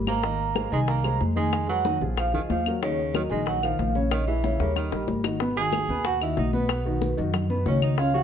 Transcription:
Already playing: G#1
0.07 G#3 A#3 G#4 C5 A#5, high bongo, high conga, claves
0.23 D#3 D#4 D#5, high bongo, high conga
0.39 high bongo, high conga
0.55 G#3 G#4 C5, high bongo, high conga, claves
0.72 C2 D#3 G#3 D#4 D#5 G#5, high bongo, high conga
0.88 A#3 A#5, high bongo, high conga
1.04 G#3 G#4 C5, high conga, claves
1.21 F2, high bongo, low bongo, high conga
1.36 D#3 G#3 D#4 D#5 G#5, high bongo, high conga
1.53 high bongo, high conga, claves
1.68 F#3 G#3 G#4 B4 F#5, high bongo, high conga
1.85 D#3 D#4 D#5, high bongo, high conga
2.01 A#1 F3 F4 G#4, high bongo, high conga
2.17 F3 F5, high bongo, high conga, claves
2.33 D2 D#3 F3 F4 G#4 D#5, high conga
2.50 D#2 F3 F5, high bongo, low bongo, high conga
2.66 F#3 F#4 A#4, high bongo, high conga, claves
2.82 C#3 D#3 D#4 C#5 D#5, high bongo, high conga
2.98 high bongo, high conga
3.14 D#3 F#3 F#4 A#4 D#5, high bongo, high conga, claves
3.30 A#1 D#3 G#3 D#4 D#5 G#5, high bongo, high conga
3.46 F#3 F#5, high bongo, high conga
3.63 D#3 F3 F4 A#4 F5, high conga, claves
3.79 A#1, high bongo, low bongo, high conga
3.95 C#3 C#4 C#5, high bongo, high conga
4.11 D#3 D#5, high bongo, high conga, claves
4.27 E3 E4 G#4 E5, high bongo, high conga
4.43 C#3 C#4 C#5, high bongo, high conga
4.60 D#2 C#3 G3 G4 A#4 C#5, high bongo, high conga
4.76 D#3 D#5, high bongo, high conga, claves
4.92 A#1 G3 G4 A#4, high bongo, high conga
5.08 G#1, low bongo, high conga
5.24 D#3 D#4 F#4, low bongo, claves
5.40 B2 B3 B4, high bongo, high conga
5.56 D#3 D#4 F#4 G#4 G#5, high bongo, high conga
5.73 high bongo, high conga, claves
5.89 D#2 B2 B3 B4, high bongo, high conga
6.05 F#4 F#5, high bongo, high conga
6.21 D#3 D#4 E4 F#4 E5, high conga, claves
6.37 B1 D#4 D#5, high bongo, low bongo, high conga
6.53 B2 B3 B4, high bongo, high conga
6.69 high bongo, high conga, claves
6.85 D#3 D#4 F#4, high bongo, high conga
7.02 high bongo, high conga
7.17 F#2 D#3 D#4 F#4, high bongo, high conga
7.34 high bongo, high conga, low conga, claves
7.50 B2 B3 B4, high conga, low conga
7.66 C#2 D#3 C#4 D#4 F#4 C#5, high bongo, low bongo, high conga
7.82 D#4 D#5, high bongo, high conga, claves
7.98 C#3 C#4 F4 C#5 F5, high bongo, high conga
8.14 F3 F4 F#4 G#4 F#5, high bongo, high conga

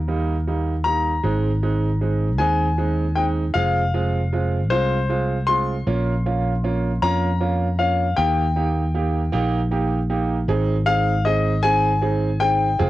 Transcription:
Already playing: D#2 A#4
0.08 G3 A#3 D#4
0.47 G3 A#3 D#4
0.84 G3 A#3 D#4 A#5
1.23 G#1 G#3 C4 D#4
1.63 G#3 C4 D#4
2.01 G#3 C4 D#4
2.38 D#2 G#3 C4 D#4 G#5
2.78 G#3 C4 D#4
3.16 G#3 C4 D#4 G5
3.54 F1 G#3 C4 F4 F5
3.94 G#3 C4 F4
4.33 G#3 C4 F4
4.70 C2 G#3 C4 F4 C5
5.09 G#3 C4 F4
5.47 G#3 C4 F4 C6
5.87 A#1 A#3 C#4 F4
6.26 A#3 C#4 F4
6.64 A#3 C#4 F4
7.02 F2 A#3 C#4 F4 A#5
7.40 A#3 C#4 F4
7.79 A#3 C#4 F4 F5
8.16 D#2 A#3 D#4 G4 G5
8.56 A#3 D#4 G4
8.95 A#3 D#4 G4
9.32 A#1 A#3 D#4 G4
9.71 A#3 D#4 G4
10.10 A#3 D#4 G4
10.48 G#1 C4 D#4 G#4
10.86 C4 D#4 G#4 F5
11.25 C4 D#4 G#4 D#5
11.63 C4 D#4 G#4 G#5
12.02 C4 D#4 G#4
12.40 C4 D#4 G#4 G5
12.79 F1 C4 F4 G#4

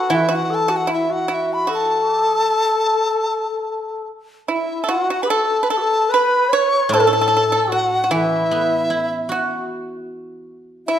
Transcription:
Already playing: F#4 F#5
0.09 E3 E4
0.15 F#4 E5
0.21 E4
0.29 F#4
0.35 F#5
0.50 A4
0.55 A5
0.68 F#4
0.76 F#5
0.87 E4
0.93 E5
1.09 F#4 F#5
1.28 E4
1.34 E5
1.53 B5
1.67 F#4 A4
1.74 A5
2.04 G4
2.23 G#4
2.41 A4
4.48 E4
4.54 E5
4.84 A4
4.88 F#4 F#5
5.10 F#4 F#5
5.23 B4 B5
5.29 A4 A5
5.63 B4
5.69 A4 A5
5.77 F#4 A4
6.09 B4 B5
6.14 B4
6.48 C#5
6.53 C#5 C#6
6.89 A2 A4 A5
6.93 A4
7.00 A4
7.07 A4
7.13 A4
7.21 A4
7.28 A4
7.37 A4
7.52 A4
7.67 F#4 F#5
7.72 F#4
8.02 F#4
8.08 E3 E4 E5
8.51 B3
8.90 E4
9.28 F#4
10.86 E4 E5

